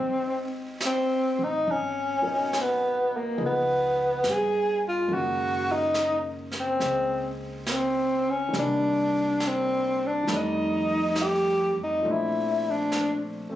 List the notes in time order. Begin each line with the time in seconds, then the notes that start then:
Already playing: G#1 G#3 C4 D#4 G4
0.80 snare, hi-hat pedal
0.86 C4
1.39 A1
1.44 D#4
1.67 G#1, brush sweep
1.71 C#4
2.22 B2 F#3 A#4
2.27 D#4
2.53 snare, hi-hat pedal
2.61 B3
3.17 A#3
3.36 C#2 F3 B3 D#4 G#4, brush sweep
3.46 B3
4.24 G2, snare, hi-hat pedal
4.30 G#4
4.88 F4
5.08 F#2 D#3 G#3 A#3, brush sweep
5.12 C#3 F#4
5.72 D#4
5.94 snare, hi-hat pedal
6.51 snare
6.60 C4
6.79 C#2 G#3 C5, brush sweep, snare
7.67 A#3, snare, hi-hat pedal
7.72 C4
8.30 C#4
8.49 D#3
8.53 C2 G3 A#3, brush sweep, snare
8.59 D4
9.40 snare, hi-hat pedal
9.47 C4
10.07 D4
10.23 D#3 G3
10.27 F2 A3, brush sweep, snare
10.34 D#4 D5
11.16 snare, hi-hat pedal
11.22 G4
11.76 F2
11.84 D#4
12.01 F3 A3 C4, brush sweep
12.05 A#1 D4
12.12 E4
12.71 D4
12.92 snare, hi-hat pedal
13.50 A3 C4, muted upright bass stroke